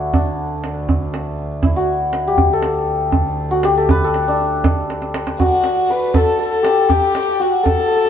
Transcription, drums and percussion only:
0.14 tombak dum
0.64 tombak tek
0.89 tombak dum
1.14 tombak tek
1.38 tombak ka
1.63 tombak dum
2.13 tombak tek
2.38 tombak dum
2.63 tombak tek
2.88 tombak ka
3.12 tombak dum
3.63 tombak tek
3.89 tombak dum
4.14 tombak tek
4.40 tombak ka
4.64 tombak dum
4.90 tombak tek
5.02 tombak ka
5.14 tombak tek
5.27 tombak ka
5.40 tombak dum
5.64 tombak tek
5.90 tombak ka
6.14 tombak dum
6.65 tombak tek
6.90 tombak dum
7.15 tombak tek
7.42 tombak ka
7.66 tombak dum

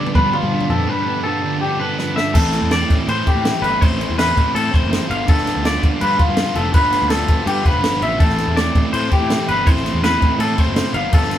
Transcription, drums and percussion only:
0.06 floor tom
0.15 kick, mid tom
0.33 floor tom
0.60 floor tom
0.70 mid tom
1.99 snare
2.17 snare
2.35 kick, crash
2.53 snare, crash
2.71 snare, crash
2.90 kick, crash
3.08 crash
3.27 kick, crash
3.45 snare, crash
3.64 crash
3.82 kick, crash
4.01 crash
4.19 snare, crash
4.37 kick, crash
4.56 crash
4.74 kick, crash
4.93 snare, crash
5.11 crash
5.28 kick, crash
5.38 snare
5.47 snare, crash
5.65 snare, crash
5.83 kick, crash
6.01 crash
6.19 kick, crash
6.37 snare, crash
6.55 crash
6.74 kick, crash
6.92 snare, crash
7.10 snare, crash
7.28 kick, crash
7.47 crash
7.65 kick, crash
7.84 snare, crash
8.02 crash
8.20 kick, crash
8.30 snare
8.38 snare, crash
8.57 snare, crash
8.75 kick, crash
8.94 crash
9.11 kick, crash
9.30 snare, crash
9.49 crash
9.67 kick, crash
9.77 snare
9.86 snare, crash
10.04 snare, crash
10.22 kick, crash
10.40 crash
10.58 kick, crash
10.76 snare, crash
10.94 crash
11.13 kick, crash
11.22 snare
11.31 snare, crash

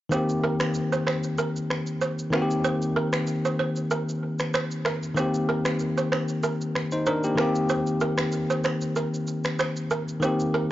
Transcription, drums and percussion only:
0.12 shaker
0.29 shaker
0.60 finger snap, cross-stick, shaker
0.74 shaker
0.93 shaker
1.07 finger snap, cross-stick
1.24 shaker
1.38 shaker
1.56 shaker
1.70 finger snap, cross-stick
1.87 shaker
2.01 shaker
2.19 shaker
2.33 finger snap, cross-stick
2.51 shaker
2.65 shaker
2.82 shaker
3.13 finger snap, cross-stick, shaker
3.27 shaker
3.45 shaker
3.76 shaker
3.91 shaker
4.09 shaker
4.39 finger snap, cross-stick, shaker
4.54 finger snap, cross-stick, shaker
4.71 shaker
4.85 finger snap, cross-stick
5.03 shaker
5.17 shaker
5.34 shaker
5.65 finger snap, cross-stick, shaker
5.79 shaker
5.98 shaker
6.12 finger snap, cross-stick
6.29 shaker
6.43 shaker
6.61 shaker
6.75 finger snap, cross-stick
6.92 shaker
7.06 shaker
7.24 shaker
7.37 finger snap, cross-stick
7.56 shaker
7.69 shaker
7.87 shaker
8.01 shaker
8.18 finger snap, cross-stick, shaker
8.32 shaker
8.51 shaker
8.64 finger snap, cross-stick, shaker
8.81 shaker
8.96 shaker
9.14 shaker
9.27 shaker
9.44 finger snap, cross-stick, shaker
9.59 finger snap, cross-stick, shaker
9.77 shaker
9.91 shaker
10.09 shaker
10.23 shaker
10.40 shaker

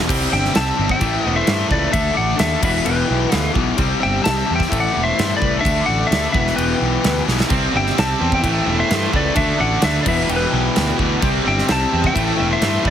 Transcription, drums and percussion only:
0.09 kick, crash
0.45 snare
0.55 snare, crash
0.89 kick
1.01 kick, crash
1.47 snare, crash
1.71 kick
1.93 kick, crash
2.39 snare, crash
2.63 kick, crash
2.86 crash
3.32 snare, crash
3.55 kick
3.78 kick, crash
4.25 snare, crash
4.60 kick, snare
4.72 kick, crash
5.19 snare, crash
5.42 kick
5.65 kick, crash
6.12 snare, crash
6.34 kick
6.47 snare
6.58 crash
7.04 snare, crash
7.28 snare
7.40 snare
7.50 kick, crash
7.87 snare
7.98 snare, crash
8.32 kick
8.44 kick, crash
8.91 snare, crash
9.13 kick
9.36 kick, crash
9.82 snare, crash
10.06 kick, crash
10.29 crash
10.76 snare, crash
10.99 kick
11.22 kick, crash
11.59 snare
11.68 snare, crash
12.04 kick
12.16 kick, crash
12.62 snare, crash
12.85 kick

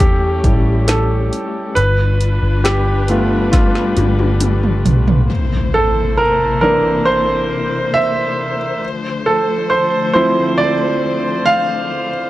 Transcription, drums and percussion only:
0.00 kick, closed hi-hat
0.44 kick, closed hi-hat
0.88 snare, closed hi-hat
1.33 closed hi-hat
1.76 closed hi-hat
2.21 closed hi-hat
2.65 snare, closed hi-hat
3.08 closed hi-hat
3.53 kick, snare, closed hi-hat
3.75 snare
3.97 closed hi-hat, high tom
4.19 high tom
4.40 closed hi-hat, mid tom
4.63 mid tom
4.85 closed hi-hat, floor tom
5.08 floor tom

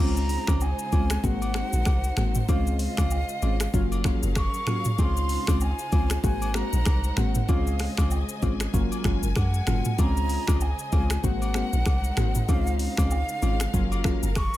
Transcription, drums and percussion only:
0.17 shaker
0.29 open hi-hat, shaker
0.47 finger snap, kick, cross-stick, high agogo, shaker
0.61 low woodblock, shaker
0.79 shaker
0.92 kick, high agogo, shaker
1.10 finger snap, cross-stick, shaker
1.24 kick, shaker
1.42 high agogo, shaker
1.54 finger snap, cross-stick, shaker
1.73 shaker
1.85 finger snap, kick, cross-stick, high agogo, shaker
2.04 shaker
2.17 finger snap, cross-stick, mid tom, shaker
2.35 mid tom, shaker
2.49 kick, high agogo, shaker
2.67 shaker
2.79 open hi-hat, shaker
2.97 finger snap, kick, cross-stick, high agogo, shaker
3.11 low woodblock, shaker
3.29 shaker
3.42 high agogo, shaker
3.60 finger snap, cross-stick, shaker
3.74 kick, shaker
3.92 high agogo, shaker
4.04 finger snap, kick, cross-stick, shaker
4.23 shaker
4.35 finger snap, kick, cross-stick, high agogo, shaker
4.54 shaker
4.67 finger snap, cross-stick, mid tom, shaker
4.85 mid tom, shaker
4.98 kick, high agogo, shaker
5.17 shaker
5.29 open hi-hat, shaker
5.47 finger snap, kick, cross-stick, high agogo, shaker
5.61 low woodblock, shaker
5.79 shaker
5.92 kick, high agogo, shaker
6.10 finger snap, cross-stick, shaker
6.24 kick, shaker
6.42 high agogo, shaker
6.54 finger snap, cross-stick, shaker
6.73 shaker
6.85 finger snap, kick, cross-stick, high agogo, shaker
7.04 shaker
7.17 finger snap, cross-stick, mid tom, shaker
7.35 mid tom, shaker
7.49 kick, high agogo, shaker
7.67 shaker
7.79 finger snap, cross-stick, open hi-hat, shaker
7.97 finger snap, kick, cross-stick, high agogo, shaker
8.11 low woodblock, shaker
8.29 shaker
8.42 kick, high agogo, shaker
8.60 finger snap, cross-stick, shaker
8.74 kick, shaker
8.92 high agogo, shaker
9.04 finger snap, kick, cross-stick, shaker
9.23 shaker
9.36 finger snap, kick, cross-stick, high agogo, shaker
9.54 shaker
9.67 finger snap, cross-stick, mid tom, shaker
9.85 mid tom, shaker
9.99 kick, high agogo, shaker
10.17 shaker
10.29 open hi-hat, shaker
10.47 finger snap, kick, cross-stick, high agogo, shaker
10.61 low woodblock, shaker
10.79 shaker
10.92 kick, high agogo, shaker
11.10 finger snap, cross-stick, shaker
11.24 kick, shaker
11.42 high agogo, shaker
11.54 finger snap, cross-stick, shaker
11.73 shaker
11.86 finger snap, kick, cross-stick, high agogo, shaker
12.04 shaker
12.17 finger snap, cross-stick, mid tom, shaker
12.35 mid tom, shaker
12.49 kick, high agogo, shaker
12.67 shaker
12.79 open hi-hat, shaker
12.97 finger snap, kick, cross-stick, high agogo, shaker
13.11 low woodblock, shaker
13.29 shaker
13.42 high agogo, shaker
13.60 finger snap, cross-stick, shaker
13.74 kick, shaker
13.92 high agogo, shaker
14.04 finger snap, kick, cross-stick, shaker
14.23 shaker
14.35 finger snap, kick, cross-stick, high agogo, shaker
14.54 shaker

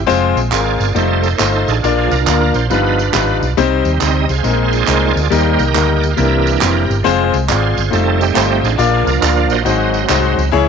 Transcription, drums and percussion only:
0.10 tambourine
0.37 tambourine
0.52 clap, tambourine
0.81 tambourine
0.96 tambourine
1.24 tambourine
1.39 clap, tambourine
1.68 tambourine
1.84 tambourine
2.11 tambourine
2.27 clap, tambourine
2.54 tambourine
2.71 tambourine
2.99 tambourine
3.14 clap, tambourine
3.43 tambourine
3.58 tambourine
3.85 tambourine
4.01 clap, tambourine
4.29 tambourine
4.44 tambourine
4.73 tambourine
4.87 clap, tambourine
5.17 tambourine
5.32 tambourine
5.59 tambourine
5.76 clap, tambourine
6.03 tambourine
6.17 tambourine
6.47 tambourine
6.61 clap, tambourine
6.91 tambourine
7.06 tambourine
7.34 tambourine
7.49 clap, tambourine
7.77 tambourine
7.93 tambourine
8.21 tambourine
8.36 clap, tambourine
8.65 tambourine
8.79 tambourine
9.07 tambourine
9.23 clap, tambourine
9.50 tambourine
9.66 tambourine
9.94 tambourine
10.10 clap, tambourine
10.39 tambourine

